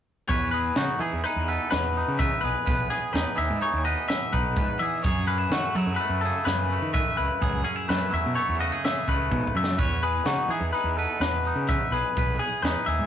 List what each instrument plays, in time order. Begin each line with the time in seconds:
0.29 fingered electric bass E2, clean electric guitar E2 B4 C#5, kick, closed hi-hat
0.51 clean electric guitar G#4 B4, closed hi-hat
0.76 fingered electric bass C#3, clean electric guitar D#4 F#4, snare, closed hi-hat
0.99 clean electric guitar E3 G#4, fingered electric bass E3, closed hi-hat
1.13 fingered electric bass E2
1.24 clean electric guitar D#4 B4, closed hi-hat
1.36 fingered electric bass E2
1.48 clean electric guitar B2 A4 B4, closed hi-hat
1.71 fingered electric bass E2, clean electric guitar B4, snare, closed hi-hat
1.96 clean electric guitar D#4, closed hi-hat
2.08 fingered electric bass C#3
2.19 clean electric guitar E2 B4 E5, kick, closed hi-hat
2.41 fingered electric bass B1, clean electric guitar G#4 B4, closed hi-hat
2.65 fingered electric bass B1, clean electric guitar E2 B4, kick, closed hi-hat
2.90 clean electric guitar G#4, snare, closed hi-hat
3.13 fingered electric bass E2, clean electric guitar D#4 B4, snare, closed hi-hat
3.36 fingered electric bass D#2, clean electric guitar E3 G#4 E5, closed hi-hat
3.50 fingered electric bass G#2
3.61 clean electric guitar D#4 C#5, closed hi-hat
3.73 fingered electric bass D#2
3.84 clean electric guitar B2 B4 D#5, closed hi-hat
4.09 clean electric guitar E5, snare, closed hi-hat
4.32 fingered electric bass B1, clean electric guitar D#4 B4, kick, closed hi-hat
4.56 clean electric guitar E2 B4, fingered electric bass G#2, kick, closed hi-hat
4.79 fingered electric bass E3, clean electric guitar G#4 E5, closed hi-hat
5.03 fingered electric bass F#2, clean electric guitar F#2 G#4 C#5, kick, closed hi-hat
5.27 clean electric guitar C#4 B4, closed hi-hat
5.38 clean electric guitar E4
5.50 fingered electric bass D#3, clean electric guitar A3 F#4, snare, closed hi-hat
5.75 fingered electric bass F#3, clean electric guitar F#3 E4 G#4, closed hi-hat
5.86 fingered electric bass F#2
5.96 clean electric guitar A3 B4, closed hi-hat
6.09 fingered electric bass F#2
6.21 clean electric guitar C#3 A4, closed hi-hat
6.25 clean electric guitar G#4
6.45 fingered electric bass F#2, clean electric guitar B4, snare, closed hi-hat
6.71 clean electric guitar A3, closed hi-hat
6.82 fingered electric bass D#3
6.93 clean electric guitar F#2 B4 E5, kick, closed hi-hat
7.17 fingered electric bass C#2, clean electric guitar E4 B4, closed hi-hat
7.41 fingered electric bass C#2, clean electric guitar F#2 G#4, kick, closed hi-hat
7.64 clean electric guitar C#4 G#4, closed hi-hat
7.76 clean electric guitar E4
7.88 fingered electric bass F#2, clean electric guitar A3 B4, snare, closed hi-hat
8.10 fingered electric bass E2, clean electric guitar F#3 E4 E5
8.15 closed hi-hat
8.26 fingered electric bass B2
8.35 clean electric guitar A3 C#5, closed hi-hat
8.49 fingered electric bass E2
8.59 clean electric guitar C#3 F#4 D#5, closed hi-hat
8.72 clean electric guitar G#4
8.85 clean electric guitar E5, snare, closed hi-hat
9.08 fingered electric bass C#2, clean electric guitar A3 B4, kick, closed hi-hat
9.31 clean electric guitar G#2, fingered electric bass B2, kick
9.47 kick
9.54 clean electric guitar F#2 E5, fingered electric bass F#2
9.64 snare
9.78 clean electric guitar E2 B4 C#5, fingered electric bass E2, kick, closed hi-hat
10.02 clean electric guitar G#4 B4, closed hi-hat
10.25 fingered electric bass C#3, clean electric guitar D#4 F#4, snare, closed hi-hat
10.48 fingered electric bass E3, clean electric guitar E3 G#4, closed hi-hat
10.60 fingered electric bass E2
10.73 clean electric guitar D#4 B4, closed hi-hat
10.84 fingered electric bass E2
10.97 clean electric guitar B2 A4 B4, closed hi-hat
11.20 fingered electric bass E2, clean electric guitar B4, snare, closed hi-hat
11.45 clean electric guitar D#4, closed hi-hat
11.56 fingered electric bass C#3
11.68 clean electric guitar E2 B4 E5, kick, closed hi-hat
11.91 fingered electric bass B1, clean electric guitar G#4 B4, closed hi-hat
12.17 fingered electric bass B1, clean electric guitar E2 B4, kick, closed hi-hat
12.39 clean electric guitar G#4, closed hi-hat
12.62 fingered electric bass E2, clean electric guitar D#4 B4, snare, closed hi-hat
12.86 fingered electric bass D#2, clean electric guitar E3 G#4 E5, closed hi-hat
12.99 fingered electric bass G#2